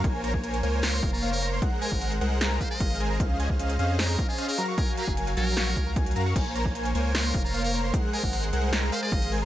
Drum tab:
CC |--------------------------------|--------------------------------|--------------------------------|--------------------------------|
HH |x---x---x-x-x---x---x---x-xxx---|x---x---x-x-x---x---x---x-xxx---|x---x---x-x-x---x---x---x-xxx---|x---x---x-x-x---x---x---x-xxx---|
SD |----------------o---------------|----------------o---------------|----------------o---------------|----------------o---------------|
BD |o-----o-------------o-----------|o-----o-------------o---o-------|o-----o-------------o-----------|o-----o-------------o---o-------|

CC |x-------------------------------|--------------------------------|
HH |x---x---x-x-x---x---x---x-x-o---|x---x---x-x-x---x---x---x-x-o---|
SD |----------------o---------------|----------------o---------------|
BD |o-----o-------------o-----------|o-----o-----------------o-------|